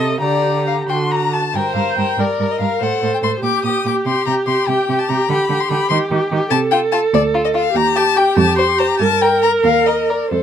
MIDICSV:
0, 0, Header, 1, 5, 480
1, 0, Start_track
1, 0, Key_signature, -2, "minor"
1, 0, Tempo, 444774
1, 226, Time_signature, 6, 3, 24, 8
1, 1664, Tempo, 424628
1, 2624, Tempo, 412939
1, 7420, Key_signature, -2, "major"
1, 9824, Tempo, 426743
1, 11264, Tempo, 455581
1, 11857, End_track
2, 0, Start_track
2, 0, Title_t, "Violin"
2, 0, Program_c, 0, 40
2, 233, Note_on_c, 0, 74, 44
2, 702, Note_off_c, 0, 74, 0
2, 725, Note_on_c, 0, 77, 46
2, 812, Note_off_c, 0, 77, 0
2, 964, Note_on_c, 0, 79, 41
2, 1050, Note_off_c, 0, 79, 0
2, 1201, Note_on_c, 0, 82, 42
2, 1439, Note_on_c, 0, 81, 47
2, 1456, Note_off_c, 0, 82, 0
2, 1682, Note_on_c, 0, 79, 55
2, 1698, Note_off_c, 0, 81, 0
2, 1903, Note_off_c, 0, 79, 0
2, 1910, Note_on_c, 0, 77, 52
2, 2144, Note_off_c, 0, 77, 0
2, 2163, Note_on_c, 0, 79, 52
2, 2407, Note_on_c, 0, 74, 49
2, 2424, Note_off_c, 0, 79, 0
2, 2766, Note_on_c, 0, 75, 50
2, 2783, Note_off_c, 0, 74, 0
2, 2870, Note_off_c, 0, 75, 0
2, 2877, Note_on_c, 0, 77, 42
2, 3136, Note_on_c, 0, 78, 47
2, 3153, Note_off_c, 0, 77, 0
2, 3483, Note_off_c, 0, 78, 0
2, 3494, Note_on_c, 0, 79, 45
2, 3537, Note_off_c, 0, 79, 0
2, 3604, Note_on_c, 0, 84, 53
2, 3697, Note_off_c, 0, 84, 0
2, 3843, Note_on_c, 0, 86, 59
2, 4078, Note_off_c, 0, 86, 0
2, 4088, Note_on_c, 0, 87, 51
2, 4321, Note_off_c, 0, 87, 0
2, 4346, Note_on_c, 0, 86, 47
2, 4437, Note_off_c, 0, 86, 0
2, 4573, Note_on_c, 0, 84, 54
2, 4792, Note_off_c, 0, 84, 0
2, 4799, Note_on_c, 0, 82, 64
2, 4892, Note_off_c, 0, 82, 0
2, 5041, Note_on_c, 0, 84, 54
2, 5278, Note_on_c, 0, 79, 58
2, 5296, Note_off_c, 0, 84, 0
2, 5646, Note_on_c, 0, 81, 51
2, 5663, Note_off_c, 0, 79, 0
2, 5763, Note_on_c, 0, 82, 52
2, 5781, Note_off_c, 0, 81, 0
2, 5992, Note_on_c, 0, 83, 60
2, 6010, Note_off_c, 0, 82, 0
2, 6357, Note_on_c, 0, 84, 54
2, 6374, Note_off_c, 0, 83, 0
2, 6460, Note_on_c, 0, 83, 71
2, 6478, Note_off_c, 0, 84, 0
2, 6691, Note_off_c, 0, 83, 0
2, 6698, Note_on_c, 0, 84, 70
2, 6791, Note_off_c, 0, 84, 0
2, 7408, Note_on_c, 0, 81, 74
2, 7501, Note_off_c, 0, 81, 0
2, 7646, Note_on_c, 0, 79, 79
2, 7739, Note_off_c, 0, 79, 0
2, 7888, Note_on_c, 0, 81, 70
2, 7981, Note_off_c, 0, 81, 0
2, 8147, Note_on_c, 0, 74, 74
2, 8240, Note_off_c, 0, 74, 0
2, 8502, Note_on_c, 0, 75, 61
2, 8550, Note_off_c, 0, 75, 0
2, 8626, Note_on_c, 0, 77, 68
2, 8867, Note_on_c, 0, 82, 75
2, 8885, Note_off_c, 0, 77, 0
2, 9099, Note_on_c, 0, 81, 83
2, 9117, Note_off_c, 0, 82, 0
2, 9344, Note_on_c, 0, 79, 74
2, 9362, Note_off_c, 0, 81, 0
2, 9580, Note_off_c, 0, 79, 0
2, 9587, Note_on_c, 0, 81, 74
2, 9820, Note_off_c, 0, 81, 0
2, 9827, Note_on_c, 0, 84, 64
2, 10053, Note_on_c, 0, 82, 72
2, 10070, Note_off_c, 0, 84, 0
2, 10282, Note_off_c, 0, 82, 0
2, 10288, Note_on_c, 0, 81, 83
2, 10540, Note_on_c, 0, 79, 74
2, 10556, Note_off_c, 0, 81, 0
2, 10765, Note_off_c, 0, 79, 0
2, 10772, Note_on_c, 0, 82, 71
2, 10862, Note_off_c, 0, 82, 0
2, 11017, Note_on_c, 0, 77, 66
2, 11265, Note_on_c, 0, 75, 49
2, 11281, Note_off_c, 0, 77, 0
2, 11504, Note_on_c, 0, 74, 47
2, 11520, Note_off_c, 0, 75, 0
2, 11744, Note_off_c, 0, 74, 0
2, 11751, Note_on_c, 0, 72, 47
2, 11857, Note_off_c, 0, 72, 0
2, 11857, End_track
3, 0, Start_track
3, 0, Title_t, "Viola"
3, 0, Program_c, 1, 41
3, 0, Note_on_c, 1, 69, 36
3, 226, Note_off_c, 1, 69, 0
3, 233, Note_on_c, 1, 67, 33
3, 956, Note_on_c, 1, 66, 32
3, 972, Note_off_c, 1, 67, 0
3, 1446, Note_off_c, 1, 66, 0
3, 1670, Note_on_c, 1, 72, 49
3, 2391, Note_on_c, 1, 70, 36
3, 2408, Note_off_c, 1, 72, 0
3, 3113, Note_on_c, 1, 69, 44
3, 3130, Note_off_c, 1, 70, 0
3, 3830, Note_off_c, 1, 69, 0
3, 3837, Note_on_c, 1, 67, 46
3, 5961, Note_off_c, 1, 67, 0
3, 6000, Note_on_c, 1, 67, 51
3, 7392, Note_off_c, 1, 67, 0
3, 7417, Note_on_c, 1, 69, 62
3, 8830, Note_off_c, 1, 69, 0
3, 8855, Note_on_c, 1, 67, 63
3, 10294, Note_on_c, 1, 70, 68
3, 10311, Note_off_c, 1, 67, 0
3, 11734, Note_off_c, 1, 70, 0
3, 11740, Note_on_c, 1, 69, 41
3, 11857, Note_off_c, 1, 69, 0
3, 11857, End_track
4, 0, Start_track
4, 0, Title_t, "Violin"
4, 0, Program_c, 2, 40
4, 0, Note_on_c, 2, 75, 63
4, 226, Note_off_c, 2, 75, 0
4, 234, Note_on_c, 2, 82, 40
4, 891, Note_off_c, 2, 82, 0
4, 955, Note_on_c, 2, 84, 46
4, 1200, Note_on_c, 2, 82, 37
4, 1216, Note_off_c, 2, 84, 0
4, 1436, Note_on_c, 2, 81, 35
4, 1452, Note_off_c, 2, 82, 0
4, 1667, Note_off_c, 2, 81, 0
4, 1679, Note_on_c, 2, 70, 38
4, 1907, Note_off_c, 2, 70, 0
4, 1913, Note_on_c, 2, 70, 33
4, 2146, Note_off_c, 2, 70, 0
4, 2153, Note_on_c, 2, 70, 34
4, 2386, Note_off_c, 2, 70, 0
4, 2396, Note_on_c, 2, 70, 34
4, 2621, Note_off_c, 2, 70, 0
4, 2628, Note_on_c, 2, 70, 35
4, 2862, Note_off_c, 2, 70, 0
4, 2868, Note_on_c, 2, 70, 35
4, 3104, Note_off_c, 2, 70, 0
4, 3113, Note_on_c, 2, 72, 39
4, 3346, Note_off_c, 2, 72, 0
4, 3353, Note_on_c, 2, 72, 33
4, 3587, Note_off_c, 2, 72, 0
4, 3594, Note_on_c, 2, 72, 34
4, 3830, Note_off_c, 2, 72, 0
4, 3840, Note_on_c, 2, 67, 37
4, 4076, Note_off_c, 2, 67, 0
4, 4093, Note_on_c, 2, 67, 34
4, 4323, Note_off_c, 2, 67, 0
4, 4331, Note_on_c, 2, 67, 33
4, 4562, Note_off_c, 2, 67, 0
4, 4569, Note_on_c, 2, 67, 38
4, 4800, Note_off_c, 2, 67, 0
4, 4807, Note_on_c, 2, 67, 38
4, 5039, Note_off_c, 2, 67, 0
4, 5048, Note_on_c, 2, 67, 35
4, 5280, Note_off_c, 2, 67, 0
4, 5288, Note_on_c, 2, 67, 41
4, 5518, Note_off_c, 2, 67, 0
4, 5525, Note_on_c, 2, 67, 36
4, 5760, Note_off_c, 2, 67, 0
4, 5769, Note_on_c, 2, 67, 38
4, 5999, Note_off_c, 2, 67, 0
4, 6007, Note_on_c, 2, 67, 47
4, 6236, Note_off_c, 2, 67, 0
4, 6242, Note_on_c, 2, 67, 42
4, 6469, Note_off_c, 2, 67, 0
4, 6476, Note_on_c, 2, 67, 37
4, 6697, Note_off_c, 2, 67, 0
4, 6704, Note_on_c, 2, 67, 45
4, 6931, Note_off_c, 2, 67, 0
4, 6938, Note_on_c, 2, 67, 44
4, 7175, Note_off_c, 2, 67, 0
4, 7188, Note_on_c, 2, 67, 48
4, 7417, Note_off_c, 2, 67, 0
4, 7659, Note_on_c, 2, 65, 52
4, 7735, Note_off_c, 2, 65, 0
4, 7894, Note_on_c, 2, 65, 45
4, 7972, Note_off_c, 2, 65, 0
4, 8380, Note_on_c, 2, 65, 52
4, 8457, Note_off_c, 2, 65, 0
4, 8612, Note_on_c, 2, 65, 50
4, 8690, Note_off_c, 2, 65, 0
4, 9094, Note_on_c, 2, 67, 53
4, 9173, Note_off_c, 2, 67, 0
4, 9334, Note_on_c, 2, 67, 47
4, 9412, Note_off_c, 2, 67, 0
4, 9819, Note_on_c, 2, 72, 52
4, 9896, Note_off_c, 2, 72, 0
4, 10059, Note_on_c, 2, 72, 47
4, 10135, Note_off_c, 2, 72, 0
4, 10535, Note_on_c, 2, 70, 49
4, 10613, Note_off_c, 2, 70, 0
4, 10780, Note_on_c, 2, 70, 45
4, 10857, Note_off_c, 2, 70, 0
4, 11269, Note_on_c, 2, 70, 36
4, 11344, Note_off_c, 2, 70, 0
4, 11506, Note_on_c, 2, 70, 39
4, 11582, Note_off_c, 2, 70, 0
4, 11857, End_track
5, 0, Start_track
5, 0, Title_t, "Cello"
5, 0, Program_c, 3, 42
5, 0, Note_on_c, 3, 48, 47
5, 216, Note_off_c, 3, 48, 0
5, 233, Note_on_c, 3, 50, 33
5, 938, Note_off_c, 3, 50, 0
5, 959, Note_on_c, 3, 50, 34
5, 1438, Note_off_c, 3, 50, 0
5, 1664, Note_on_c, 3, 43, 34
5, 1755, Note_off_c, 3, 43, 0
5, 1900, Note_on_c, 3, 43, 35
5, 1991, Note_off_c, 3, 43, 0
5, 2149, Note_on_c, 3, 43, 32
5, 2240, Note_off_c, 3, 43, 0
5, 2383, Note_on_c, 3, 43, 42
5, 2474, Note_off_c, 3, 43, 0
5, 2626, Note_on_c, 3, 43, 34
5, 2719, Note_off_c, 3, 43, 0
5, 2871, Note_on_c, 3, 43, 35
5, 2964, Note_off_c, 3, 43, 0
5, 3109, Note_on_c, 3, 45, 35
5, 3202, Note_off_c, 3, 45, 0
5, 3354, Note_on_c, 3, 45, 35
5, 3447, Note_off_c, 3, 45, 0
5, 3589, Note_on_c, 3, 45, 36
5, 3682, Note_off_c, 3, 45, 0
5, 3824, Note_on_c, 3, 46, 42
5, 3917, Note_off_c, 3, 46, 0
5, 4072, Note_on_c, 3, 46, 38
5, 4165, Note_off_c, 3, 46, 0
5, 4318, Note_on_c, 3, 46, 38
5, 4411, Note_off_c, 3, 46, 0
5, 4559, Note_on_c, 3, 48, 37
5, 4652, Note_off_c, 3, 48, 0
5, 4802, Note_on_c, 3, 48, 36
5, 4895, Note_off_c, 3, 48, 0
5, 5041, Note_on_c, 3, 48, 35
5, 5134, Note_off_c, 3, 48, 0
5, 5282, Note_on_c, 3, 48, 43
5, 5375, Note_off_c, 3, 48, 0
5, 5528, Note_on_c, 3, 48, 38
5, 5621, Note_off_c, 3, 48, 0
5, 5766, Note_on_c, 3, 48, 43
5, 5859, Note_off_c, 3, 48, 0
5, 5999, Note_on_c, 3, 50, 44
5, 6092, Note_off_c, 3, 50, 0
5, 6234, Note_on_c, 3, 50, 38
5, 6327, Note_off_c, 3, 50, 0
5, 6474, Note_on_c, 3, 50, 46
5, 6567, Note_off_c, 3, 50, 0
5, 6711, Note_on_c, 3, 51, 51
5, 6804, Note_off_c, 3, 51, 0
5, 6946, Note_on_c, 3, 51, 50
5, 7039, Note_off_c, 3, 51, 0
5, 7187, Note_on_c, 3, 51, 48
5, 7280, Note_off_c, 3, 51, 0
5, 7416, Note_on_c, 3, 48, 61
5, 7986, Note_off_c, 3, 48, 0
5, 8142, Note_on_c, 3, 38, 69
5, 8711, Note_off_c, 3, 38, 0
5, 8852, Note_on_c, 3, 39, 62
5, 9427, Note_off_c, 3, 39, 0
5, 9574, Note_on_c, 3, 41, 68
5, 10144, Note_off_c, 3, 41, 0
5, 10293, Note_on_c, 3, 43, 56
5, 10865, Note_off_c, 3, 43, 0
5, 11014, Note_on_c, 3, 39, 57
5, 11589, Note_off_c, 3, 39, 0
5, 11741, Note_on_c, 3, 41, 44
5, 11857, Note_off_c, 3, 41, 0
5, 11857, End_track
0, 0, End_of_file